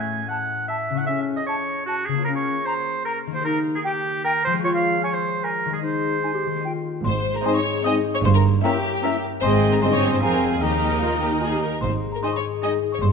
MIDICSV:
0, 0, Header, 1, 13, 480
1, 0, Start_track
1, 0, Key_signature, -4, "major"
1, 0, Tempo, 394997
1, 1317, Time_signature, 3, 2, 24, 8
1, 6121, Tempo, 398406
1, 15863, End_track
2, 0, Start_track
2, 0, Title_t, "Xylophone"
2, 0, Program_c, 0, 13
2, 8539, Note_on_c, 0, 84, 70
2, 8877, Note_off_c, 0, 84, 0
2, 8918, Note_on_c, 0, 82, 62
2, 9023, Note_off_c, 0, 82, 0
2, 9028, Note_on_c, 0, 84, 67
2, 9137, Note_off_c, 0, 84, 0
2, 9140, Note_on_c, 0, 85, 66
2, 9473, Note_off_c, 0, 85, 0
2, 9501, Note_on_c, 0, 87, 71
2, 9832, Note_off_c, 0, 87, 0
2, 9865, Note_on_c, 0, 85, 71
2, 9972, Note_off_c, 0, 85, 0
2, 9996, Note_on_c, 0, 84, 86
2, 10097, Note_off_c, 0, 84, 0
2, 10115, Note_on_c, 0, 82, 67
2, 10436, Note_off_c, 0, 82, 0
2, 10461, Note_on_c, 0, 79, 69
2, 11119, Note_off_c, 0, 79, 0
2, 11411, Note_on_c, 0, 84, 78
2, 11737, Note_off_c, 0, 84, 0
2, 11770, Note_on_c, 0, 82, 62
2, 11874, Note_off_c, 0, 82, 0
2, 11884, Note_on_c, 0, 84, 66
2, 11992, Note_off_c, 0, 84, 0
2, 12009, Note_on_c, 0, 85, 61
2, 12227, Note_off_c, 0, 85, 0
2, 12243, Note_on_c, 0, 84, 59
2, 12352, Note_off_c, 0, 84, 0
2, 12363, Note_on_c, 0, 82, 55
2, 12696, Note_off_c, 0, 82, 0
2, 12711, Note_on_c, 0, 80, 49
2, 12815, Note_on_c, 0, 79, 54
2, 12826, Note_off_c, 0, 80, 0
2, 13276, Note_off_c, 0, 79, 0
2, 13293, Note_on_c, 0, 77, 46
2, 13531, Note_off_c, 0, 77, 0
2, 13554, Note_on_c, 0, 79, 44
2, 13784, Note_off_c, 0, 79, 0
2, 13792, Note_on_c, 0, 80, 48
2, 14024, Note_off_c, 0, 80, 0
2, 14043, Note_on_c, 0, 82, 49
2, 14271, Note_off_c, 0, 82, 0
2, 14282, Note_on_c, 0, 84, 61
2, 14622, Note_off_c, 0, 84, 0
2, 14656, Note_on_c, 0, 82, 54
2, 14766, Note_off_c, 0, 82, 0
2, 14783, Note_on_c, 0, 84, 58
2, 14890, Note_off_c, 0, 84, 0
2, 14898, Note_on_c, 0, 85, 55
2, 15229, Note_off_c, 0, 85, 0
2, 15273, Note_on_c, 0, 87, 56
2, 15594, Note_off_c, 0, 87, 0
2, 15623, Note_on_c, 0, 85, 54
2, 15726, Note_off_c, 0, 85, 0
2, 15733, Note_on_c, 0, 84, 65
2, 15840, Note_off_c, 0, 84, 0
2, 15863, End_track
3, 0, Start_track
3, 0, Title_t, "Flute"
3, 0, Program_c, 1, 73
3, 362, Note_on_c, 1, 81, 46
3, 448, Note_off_c, 1, 81, 0
3, 839, Note_on_c, 1, 81, 46
3, 926, Note_off_c, 1, 81, 0
3, 1799, Note_on_c, 1, 81, 51
3, 1885, Note_off_c, 1, 81, 0
3, 2281, Note_on_c, 1, 81, 48
3, 2367, Note_off_c, 1, 81, 0
3, 3234, Note_on_c, 1, 82, 54
3, 3321, Note_off_c, 1, 82, 0
3, 3702, Note_on_c, 1, 82, 59
3, 3790, Note_off_c, 1, 82, 0
3, 4665, Note_on_c, 1, 79, 58
3, 4753, Note_off_c, 1, 79, 0
3, 5158, Note_on_c, 1, 79, 61
3, 5244, Note_off_c, 1, 79, 0
3, 6112, Note_on_c, 1, 80, 59
3, 6199, Note_off_c, 1, 80, 0
3, 6600, Note_on_c, 1, 80, 51
3, 6688, Note_off_c, 1, 80, 0
3, 7564, Note_on_c, 1, 80, 46
3, 7653, Note_off_c, 1, 80, 0
3, 8058, Note_on_c, 1, 79, 42
3, 8145, Note_off_c, 1, 79, 0
3, 9029, Note_on_c, 1, 80, 53
3, 9115, Note_off_c, 1, 80, 0
3, 9521, Note_on_c, 1, 80, 53
3, 9604, Note_off_c, 1, 80, 0
3, 10456, Note_on_c, 1, 82, 57
3, 10541, Note_off_c, 1, 82, 0
3, 10924, Note_on_c, 1, 82, 61
3, 11009, Note_off_c, 1, 82, 0
3, 11392, Note_on_c, 1, 80, 62
3, 11838, Note_off_c, 1, 80, 0
3, 11881, Note_on_c, 1, 80, 57
3, 12350, Note_off_c, 1, 80, 0
3, 12364, Note_on_c, 1, 80, 54
3, 12833, Note_off_c, 1, 80, 0
3, 12843, Note_on_c, 1, 82, 46
3, 14027, Note_off_c, 1, 82, 0
3, 14794, Note_on_c, 1, 80, 45
3, 14878, Note_off_c, 1, 80, 0
3, 15266, Note_on_c, 1, 80, 40
3, 15349, Note_off_c, 1, 80, 0
3, 15863, End_track
4, 0, Start_track
4, 0, Title_t, "Violin section"
4, 0, Program_c, 2, 48
4, 9015, Note_on_c, 2, 75, 60
4, 9374, Note_off_c, 2, 75, 0
4, 9508, Note_on_c, 2, 75, 63
4, 9858, Note_off_c, 2, 75, 0
4, 10456, Note_on_c, 2, 76, 68
4, 10807, Note_off_c, 2, 76, 0
4, 10937, Note_on_c, 2, 76, 62
4, 11284, Note_off_c, 2, 76, 0
4, 11411, Note_on_c, 2, 75, 60
4, 11848, Note_off_c, 2, 75, 0
4, 11882, Note_on_c, 2, 75, 56
4, 12351, Note_off_c, 2, 75, 0
4, 12360, Note_on_c, 2, 80, 47
4, 12830, Note_off_c, 2, 80, 0
4, 12840, Note_on_c, 2, 75, 49
4, 14049, Note_off_c, 2, 75, 0
4, 14795, Note_on_c, 2, 75, 41
4, 14892, Note_off_c, 2, 75, 0
4, 15277, Note_on_c, 2, 75, 41
4, 15373, Note_off_c, 2, 75, 0
4, 15863, End_track
5, 0, Start_track
5, 0, Title_t, "Oboe"
5, 0, Program_c, 3, 68
5, 0, Note_on_c, 3, 80, 70
5, 336, Note_off_c, 3, 80, 0
5, 344, Note_on_c, 3, 78, 69
5, 821, Note_off_c, 3, 78, 0
5, 827, Note_on_c, 3, 76, 69
5, 1188, Note_on_c, 3, 78, 70
5, 1206, Note_off_c, 3, 76, 0
5, 1290, Note_off_c, 3, 78, 0
5, 1297, Note_on_c, 3, 76, 75
5, 1463, Note_off_c, 3, 76, 0
5, 1661, Note_on_c, 3, 75, 70
5, 1719, Note_off_c, 3, 75, 0
5, 1782, Note_on_c, 3, 73, 74
5, 2253, Note_off_c, 3, 73, 0
5, 2260, Note_on_c, 3, 66, 80
5, 2501, Note_on_c, 3, 68, 68
5, 2519, Note_off_c, 3, 66, 0
5, 2724, Note_off_c, 3, 68, 0
5, 2732, Note_on_c, 3, 70, 82
5, 2791, Note_off_c, 3, 70, 0
5, 2869, Note_on_c, 3, 73, 75
5, 3226, Note_on_c, 3, 72, 82
5, 3244, Note_off_c, 3, 73, 0
5, 3700, Note_off_c, 3, 72, 0
5, 3707, Note_on_c, 3, 70, 79
5, 3871, Note_off_c, 3, 70, 0
5, 4065, Note_on_c, 3, 72, 79
5, 4188, Note_off_c, 3, 72, 0
5, 4194, Note_on_c, 3, 70, 92
5, 4357, Note_off_c, 3, 70, 0
5, 4564, Note_on_c, 3, 68, 85
5, 4617, Note_off_c, 3, 68, 0
5, 4682, Note_on_c, 3, 67, 81
5, 5152, Note_off_c, 3, 67, 0
5, 5160, Note_on_c, 3, 70, 97
5, 5395, Note_off_c, 3, 70, 0
5, 5404, Note_on_c, 3, 72, 91
5, 5511, Note_off_c, 3, 72, 0
5, 5646, Note_on_c, 3, 73, 100
5, 5699, Note_off_c, 3, 73, 0
5, 5766, Note_on_c, 3, 77, 93
5, 6118, Note_off_c, 3, 77, 0
5, 6125, Note_on_c, 3, 73, 82
5, 6238, Note_on_c, 3, 72, 74
5, 6256, Note_off_c, 3, 73, 0
5, 6602, Note_on_c, 3, 70, 76
5, 6620, Note_off_c, 3, 72, 0
5, 6954, Note_off_c, 3, 70, 0
5, 6961, Note_on_c, 3, 68, 65
5, 7017, Note_off_c, 3, 68, 0
5, 7091, Note_on_c, 3, 72, 72
5, 8044, Note_off_c, 3, 72, 0
5, 9032, Note_on_c, 3, 75, 46
5, 9202, Note_off_c, 3, 75, 0
5, 9508, Note_on_c, 3, 75, 55
5, 9678, Note_off_c, 3, 75, 0
5, 10453, Note_on_c, 3, 76, 56
5, 10624, Note_off_c, 3, 76, 0
5, 10932, Note_on_c, 3, 76, 59
5, 11101, Note_off_c, 3, 76, 0
5, 11397, Note_on_c, 3, 75, 59
5, 11841, Note_off_c, 3, 75, 0
5, 11888, Note_on_c, 3, 75, 53
5, 12351, Note_on_c, 3, 77, 52
5, 12369, Note_off_c, 3, 75, 0
5, 12842, Note_on_c, 3, 75, 50
5, 12860, Note_off_c, 3, 77, 0
5, 14050, Note_off_c, 3, 75, 0
5, 14779, Note_on_c, 3, 75, 38
5, 14950, Note_off_c, 3, 75, 0
5, 15257, Note_on_c, 3, 75, 43
5, 15427, Note_off_c, 3, 75, 0
5, 15863, End_track
6, 0, Start_track
6, 0, Title_t, "Violin section"
6, 0, Program_c, 4, 48
6, 8556, Note_on_c, 4, 72, 78
6, 8886, Note_off_c, 4, 72, 0
6, 8915, Note_on_c, 4, 70, 71
6, 9030, Note_off_c, 4, 70, 0
6, 9039, Note_on_c, 4, 72, 82
6, 9149, Note_off_c, 4, 72, 0
6, 9155, Note_on_c, 4, 73, 75
6, 9499, Note_off_c, 4, 73, 0
6, 9515, Note_on_c, 4, 75, 88
6, 9612, Note_off_c, 4, 75, 0
6, 9867, Note_on_c, 4, 73, 80
6, 9913, Note_off_c, 4, 73, 0
6, 9979, Note_on_c, 4, 72, 87
6, 10026, Note_off_c, 4, 72, 0
6, 10102, Note_on_c, 4, 70, 77
6, 10198, Note_off_c, 4, 70, 0
6, 10454, Note_on_c, 4, 67, 78
6, 11150, Note_off_c, 4, 67, 0
6, 11384, Note_on_c, 4, 72, 89
6, 11480, Note_off_c, 4, 72, 0
6, 11757, Note_on_c, 4, 70, 68
6, 11804, Note_off_c, 4, 70, 0
6, 11873, Note_on_c, 4, 72, 83
6, 11922, Note_off_c, 4, 72, 0
6, 12011, Note_on_c, 4, 73, 69
6, 12240, Note_off_c, 4, 73, 0
6, 12259, Note_on_c, 4, 72, 66
6, 12303, Note_off_c, 4, 72, 0
6, 12365, Note_on_c, 4, 70, 73
6, 12715, Note_off_c, 4, 70, 0
6, 12738, Note_on_c, 4, 68, 58
6, 12782, Note_off_c, 4, 68, 0
6, 12845, Note_on_c, 4, 67, 61
6, 13316, Note_off_c, 4, 67, 0
6, 13323, Note_on_c, 4, 65, 57
6, 13565, Note_off_c, 4, 65, 0
6, 13568, Note_on_c, 4, 67, 56
6, 13664, Note_off_c, 4, 67, 0
6, 13803, Note_on_c, 4, 68, 61
6, 14042, Note_off_c, 4, 68, 0
6, 14048, Note_on_c, 4, 70, 58
6, 14286, Note_off_c, 4, 70, 0
6, 14291, Note_on_c, 4, 72, 62
6, 14387, Note_off_c, 4, 72, 0
6, 14685, Note_on_c, 4, 70, 56
6, 14727, Note_off_c, 4, 70, 0
6, 14812, Note_on_c, 4, 72, 69
6, 14852, Note_off_c, 4, 72, 0
6, 14942, Note_on_c, 4, 73, 62
6, 15038, Note_off_c, 4, 73, 0
6, 15269, Note_on_c, 4, 75, 67
6, 15366, Note_off_c, 4, 75, 0
6, 15643, Note_on_c, 4, 73, 64
6, 15684, Note_off_c, 4, 73, 0
6, 15739, Note_on_c, 4, 72, 74
6, 15784, Note_off_c, 4, 72, 0
6, 15863, End_track
7, 0, Start_track
7, 0, Title_t, "Harp"
7, 0, Program_c, 5, 46
7, 0, Note_on_c, 5, 45, 46
7, 0, Note_on_c, 5, 61, 36
7, 0, Note_on_c, 5, 64, 41
7, 0, Note_on_c, 5, 68, 36
7, 0, Note_on_c, 5, 69, 39
7, 1093, Note_on_c, 5, 49, 47
7, 1136, Note_off_c, 5, 61, 0
7, 1151, Note_on_c, 5, 61, 42
7, 1192, Note_off_c, 5, 64, 0
7, 1206, Note_on_c, 5, 64, 41
7, 1224, Note_off_c, 5, 45, 0
7, 1247, Note_off_c, 5, 69, 0
7, 1262, Note_on_c, 5, 69, 39
7, 1283, Note_off_c, 5, 68, 0
7, 2517, Note_off_c, 5, 49, 0
7, 2532, Note_on_c, 5, 49, 59
7, 2588, Note_on_c, 5, 58, 47
7, 2641, Note_on_c, 5, 65, 48
7, 2693, Note_on_c, 5, 70, 47
7, 2719, Note_off_c, 5, 64, 0
7, 2747, Note_off_c, 5, 69, 0
7, 3971, Note_on_c, 5, 51, 64
7, 4009, Note_off_c, 5, 58, 0
7, 4024, Note_on_c, 5, 58, 54
7, 4082, Note_on_c, 5, 67, 55
7, 4103, Note_off_c, 5, 49, 0
7, 4122, Note_off_c, 5, 70, 0
7, 4131, Note_off_c, 5, 61, 0
7, 4137, Note_on_c, 5, 70, 52
7, 4157, Note_off_c, 5, 65, 0
7, 5426, Note_on_c, 5, 53, 64
7, 5482, Note_on_c, 5, 56, 56
7, 5536, Note_on_c, 5, 68, 52
7, 5547, Note_off_c, 5, 51, 0
7, 5573, Note_off_c, 5, 58, 0
7, 5590, Note_on_c, 5, 73, 58
7, 5602, Note_off_c, 5, 67, 0
7, 5630, Note_off_c, 5, 70, 0
7, 6866, Note_on_c, 5, 51, 51
7, 6905, Note_off_c, 5, 56, 0
7, 6920, Note_on_c, 5, 56, 43
7, 6958, Note_off_c, 5, 68, 0
7, 6973, Note_on_c, 5, 68, 41
7, 7001, Note_off_c, 5, 53, 0
7, 7028, Note_on_c, 5, 75, 43
7, 7082, Note_off_c, 5, 73, 0
7, 7825, Note_off_c, 5, 51, 0
7, 7840, Note_on_c, 5, 51, 43
7, 7896, Note_on_c, 5, 58, 37
7, 7950, Note_on_c, 5, 67, 36
7, 7993, Note_off_c, 5, 75, 0
7, 7997, Note_off_c, 5, 56, 0
7, 8008, Note_on_c, 5, 75, 34
7, 8024, Note_off_c, 5, 68, 0
7, 8453, Note_off_c, 5, 51, 0
7, 8481, Note_off_c, 5, 58, 0
7, 8508, Note_off_c, 5, 67, 0
7, 8551, Note_on_c, 5, 44, 56
7, 8790, Note_on_c, 5, 56, 45
7, 9016, Note_off_c, 5, 75, 0
7, 9030, Note_on_c, 5, 75, 51
7, 9270, Note_on_c, 5, 68, 52
7, 9494, Note_off_c, 5, 75, 0
7, 9508, Note_on_c, 5, 75, 53
7, 9732, Note_off_c, 5, 68, 0
7, 9746, Note_on_c, 5, 68, 50
7, 9988, Note_on_c, 5, 43, 64
7, 9998, Note_off_c, 5, 44, 0
7, 9998, Note_off_c, 5, 56, 0
7, 9999, Note_off_c, 5, 68, 0
7, 9999, Note_off_c, 5, 75, 0
7, 10232, Note_on_c, 5, 58, 52
7, 10469, Note_on_c, 5, 73, 53
7, 10711, Note_on_c, 5, 70, 54
7, 10949, Note_on_c, 5, 76, 56
7, 11172, Note_off_c, 5, 70, 0
7, 11186, Note_on_c, 5, 70, 52
7, 11421, Note_on_c, 5, 44, 64
7, 11424, Note_off_c, 5, 43, 0
7, 11427, Note_off_c, 5, 58, 0
7, 11427, Note_off_c, 5, 73, 0
7, 11430, Note_off_c, 5, 70, 0
7, 11430, Note_off_c, 5, 76, 0
7, 11652, Note_on_c, 5, 56, 50
7, 11891, Note_on_c, 5, 72, 45
7, 12361, Note_on_c, 5, 53, 51
7, 12387, Note_off_c, 5, 44, 0
7, 12590, Note_off_c, 5, 72, 0
7, 12600, Note_on_c, 5, 68, 35
7, 12605, Note_on_c, 5, 72, 39
7, 12842, Note_on_c, 5, 51, 48
7, 12859, Note_off_c, 5, 68, 0
7, 12860, Note_off_c, 5, 53, 0
7, 12861, Note_off_c, 5, 72, 0
7, 12866, Note_off_c, 5, 56, 0
7, 13084, Note_on_c, 5, 63, 37
7, 13328, Note_on_c, 5, 70, 37
7, 13575, Note_on_c, 5, 75, 36
7, 13829, Note_on_c, 5, 87, 39
7, 14055, Note_off_c, 5, 75, 0
7, 14070, Note_on_c, 5, 75, 37
7, 14308, Note_on_c, 5, 44, 47
7, 14312, Note_off_c, 5, 51, 0
7, 14313, Note_off_c, 5, 70, 0
7, 14551, Note_on_c, 5, 56, 37
7, 14773, Note_off_c, 5, 75, 0
7, 14787, Note_on_c, 5, 75, 40
7, 15028, Note_on_c, 5, 68, 40
7, 15245, Note_off_c, 5, 75, 0
7, 15259, Note_on_c, 5, 75, 43
7, 15485, Note_off_c, 5, 68, 0
7, 15500, Note_on_c, 5, 68, 39
7, 15734, Note_on_c, 5, 43, 50
7, 15747, Note_off_c, 5, 63, 0
7, 15749, Note_off_c, 5, 75, 0
7, 15750, Note_off_c, 5, 68, 0
7, 15753, Note_off_c, 5, 44, 0
7, 15754, Note_off_c, 5, 56, 0
7, 15756, Note_off_c, 5, 87, 0
7, 15863, Note_off_c, 5, 43, 0
7, 15863, End_track
8, 0, Start_track
8, 0, Title_t, "Viola section"
8, 0, Program_c, 6, 48
8, 9016, Note_on_c, 6, 60, 61
8, 9018, Note_on_c, 6, 72, 61
8, 9374, Note_off_c, 6, 60, 0
8, 9375, Note_off_c, 6, 72, 0
8, 9507, Note_on_c, 6, 60, 61
8, 9513, Note_on_c, 6, 72, 67
8, 9857, Note_off_c, 6, 60, 0
8, 9861, Note_off_c, 6, 72, 0
8, 10461, Note_on_c, 6, 61, 66
8, 10465, Note_on_c, 6, 70, 68
8, 10809, Note_off_c, 6, 61, 0
8, 10811, Note_off_c, 6, 70, 0
8, 10937, Note_on_c, 6, 61, 66
8, 10939, Note_on_c, 6, 70, 63
8, 11284, Note_off_c, 6, 61, 0
8, 11285, Note_off_c, 6, 70, 0
8, 11418, Note_on_c, 6, 60, 60
8, 11420, Note_on_c, 6, 68, 62
8, 11852, Note_off_c, 6, 60, 0
8, 11853, Note_off_c, 6, 68, 0
8, 11887, Note_on_c, 6, 60, 52
8, 11888, Note_on_c, 6, 68, 52
8, 12354, Note_off_c, 6, 60, 0
8, 12354, Note_off_c, 6, 68, 0
8, 12366, Note_on_c, 6, 60, 50
8, 12370, Note_on_c, 6, 68, 49
8, 12834, Note_off_c, 6, 60, 0
8, 12836, Note_off_c, 6, 68, 0
8, 12845, Note_on_c, 6, 70, 48
8, 12848, Note_on_c, 6, 63, 49
8, 14029, Note_off_c, 6, 63, 0
8, 14052, Note_off_c, 6, 70, 0
8, 14781, Note_on_c, 6, 68, 40
8, 14786, Note_on_c, 6, 63, 43
8, 14877, Note_off_c, 6, 68, 0
8, 14882, Note_off_c, 6, 63, 0
8, 15268, Note_on_c, 6, 63, 43
8, 15271, Note_on_c, 6, 68, 41
8, 15364, Note_off_c, 6, 63, 0
8, 15367, Note_off_c, 6, 68, 0
8, 15863, End_track
9, 0, Start_track
9, 0, Title_t, "Clarinet"
9, 0, Program_c, 7, 71
9, 0, Note_on_c, 7, 57, 56
9, 275, Note_off_c, 7, 57, 0
9, 1317, Note_on_c, 7, 61, 65
9, 1717, Note_off_c, 7, 61, 0
9, 2756, Note_on_c, 7, 61, 68
9, 3155, Note_off_c, 7, 61, 0
9, 4188, Note_on_c, 7, 63, 84
9, 4593, Note_off_c, 7, 63, 0
9, 5638, Note_on_c, 7, 65, 81
9, 6041, Note_off_c, 7, 65, 0
9, 7076, Note_on_c, 7, 63, 62
9, 7488, Note_off_c, 7, 63, 0
9, 7570, Note_on_c, 7, 63, 54
9, 7686, Note_off_c, 7, 63, 0
9, 7695, Note_on_c, 7, 67, 54
9, 7859, Note_off_c, 7, 67, 0
9, 8058, Note_on_c, 7, 65, 44
9, 8533, Note_off_c, 7, 65, 0
9, 9027, Note_on_c, 7, 60, 51
9, 9198, Note_off_c, 7, 60, 0
9, 9504, Note_on_c, 7, 60, 53
9, 9675, Note_off_c, 7, 60, 0
9, 10458, Note_on_c, 7, 61, 58
9, 10627, Note_off_c, 7, 61, 0
9, 10929, Note_on_c, 7, 61, 59
9, 11098, Note_off_c, 7, 61, 0
9, 11403, Note_on_c, 7, 60, 63
9, 11844, Note_off_c, 7, 60, 0
9, 11892, Note_on_c, 7, 60, 52
9, 12356, Note_off_c, 7, 60, 0
9, 12363, Note_on_c, 7, 60, 53
9, 12858, Note_on_c, 7, 63, 45
9, 12877, Note_off_c, 7, 60, 0
9, 13284, Note_off_c, 7, 63, 0
9, 13334, Note_on_c, 7, 65, 51
9, 13494, Note_off_c, 7, 65, 0
9, 13688, Note_on_c, 7, 63, 37
9, 13742, Note_off_c, 7, 63, 0
9, 13799, Note_on_c, 7, 65, 51
9, 13855, Note_off_c, 7, 65, 0
9, 13931, Note_on_c, 7, 67, 45
9, 14094, Note_off_c, 7, 67, 0
9, 14774, Note_on_c, 7, 63, 39
9, 14946, Note_off_c, 7, 63, 0
9, 15267, Note_on_c, 7, 63, 43
9, 15434, Note_off_c, 7, 63, 0
9, 15863, End_track
10, 0, Start_track
10, 0, Title_t, "French horn section"
10, 0, Program_c, 8, 60
10, 9032, Note_on_c, 8, 56, 54
10, 9037, Note_on_c, 8, 63, 55
10, 9202, Note_off_c, 8, 56, 0
10, 9206, Note_off_c, 8, 63, 0
10, 9517, Note_on_c, 8, 63, 53
10, 9522, Note_on_c, 8, 56, 55
10, 9684, Note_off_c, 8, 63, 0
10, 9688, Note_off_c, 8, 56, 0
10, 10443, Note_on_c, 8, 64, 61
10, 10449, Note_on_c, 8, 58, 61
10, 10616, Note_off_c, 8, 64, 0
10, 10621, Note_off_c, 8, 58, 0
10, 10920, Note_on_c, 8, 58, 58
10, 10922, Note_on_c, 8, 64, 58
10, 11091, Note_off_c, 8, 58, 0
10, 11093, Note_off_c, 8, 64, 0
10, 11888, Note_on_c, 8, 56, 52
10, 11893, Note_on_c, 8, 63, 57
10, 12059, Note_off_c, 8, 56, 0
10, 12063, Note_off_c, 8, 63, 0
10, 12358, Note_on_c, 8, 65, 46
10, 12369, Note_on_c, 8, 56, 44
10, 12531, Note_off_c, 8, 65, 0
10, 12540, Note_off_c, 8, 56, 0
10, 13322, Note_on_c, 8, 63, 43
10, 13326, Note_on_c, 8, 58, 42
10, 13497, Note_off_c, 8, 63, 0
10, 13500, Note_off_c, 8, 58, 0
10, 13800, Note_on_c, 8, 63, 39
10, 13809, Note_on_c, 8, 58, 39
10, 13976, Note_off_c, 8, 63, 0
10, 13983, Note_off_c, 8, 58, 0
10, 14786, Note_on_c, 8, 56, 44
10, 14789, Note_on_c, 8, 63, 45
10, 14956, Note_off_c, 8, 56, 0
10, 14957, Note_off_c, 8, 63, 0
10, 15275, Note_on_c, 8, 63, 42
10, 15277, Note_on_c, 8, 56, 40
10, 15441, Note_off_c, 8, 63, 0
10, 15443, Note_off_c, 8, 56, 0
10, 15863, End_track
11, 0, Start_track
11, 0, Title_t, "Cello section"
11, 0, Program_c, 10, 48
11, 8547, Note_on_c, 10, 44, 73
11, 8925, Note_off_c, 10, 44, 0
11, 9977, Note_on_c, 10, 43, 82
11, 10352, Note_off_c, 10, 43, 0
11, 11407, Note_on_c, 10, 44, 63
11, 11846, Note_off_c, 10, 44, 0
11, 11879, Note_on_c, 10, 43, 56
11, 12354, Note_on_c, 10, 41, 52
11, 12359, Note_off_c, 10, 43, 0
11, 12837, Note_off_c, 10, 41, 0
11, 12841, Note_on_c, 10, 39, 50
11, 14026, Note_off_c, 10, 39, 0
11, 14294, Note_on_c, 10, 44, 58
11, 14673, Note_off_c, 10, 44, 0
11, 15735, Note_on_c, 10, 43, 63
11, 15863, Note_off_c, 10, 43, 0
11, 15863, End_track
12, 0, Start_track
12, 0, Title_t, "Double bass section"
12, 0, Program_c, 11, 48
12, 8552, Note_on_c, 11, 32, 66
12, 8928, Note_off_c, 11, 32, 0
12, 9977, Note_on_c, 11, 31, 78
12, 10352, Note_off_c, 11, 31, 0
12, 11410, Note_on_c, 11, 32, 62
12, 11848, Note_off_c, 11, 32, 0
12, 11883, Note_on_c, 11, 31, 55
12, 12361, Note_off_c, 11, 31, 0
12, 12363, Note_on_c, 11, 29, 51
12, 12842, Note_off_c, 11, 29, 0
12, 12852, Note_on_c, 11, 39, 47
12, 14031, Note_off_c, 11, 39, 0
12, 14305, Note_on_c, 11, 32, 58
12, 14679, Note_off_c, 11, 32, 0
12, 15736, Note_on_c, 11, 31, 55
12, 15863, Note_off_c, 11, 31, 0
12, 15863, End_track
13, 0, Start_track
13, 0, Title_t, "Drums"
13, 8544, Note_on_c, 9, 81, 38
13, 8664, Note_off_c, 9, 81, 0
13, 14299, Note_on_c, 9, 81, 36
13, 14420, Note_off_c, 9, 81, 0
13, 15863, End_track
0, 0, End_of_file